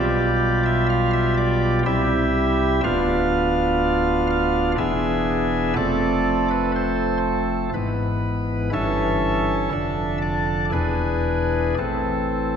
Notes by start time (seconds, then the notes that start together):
Already playing: B1 B2 G3 F4 G4 D5
0.65 E5
0.90 F5
1.13 E5
1.37 D5
1.86 C2 C3 G3 E4 G4 E5
2.83 D1 D2 B3 D4 F4 F5
4.30 F5
4.78 E1 E2 B3 D4 G#4 E5
5.76 F1 F2 A3 C4 A4 D5
6.51 B4
6.76 C5
7.74 G#1 G#2 E3 B3 B4
8.73 G1 G2 E3 C#4 A4 E5
9.72 F1 F2 D3 D4 A4
10.22 D5
10.72 E1 E2 E3 D4 G#4 B4
11.78 A1 A2 E3 C4 A4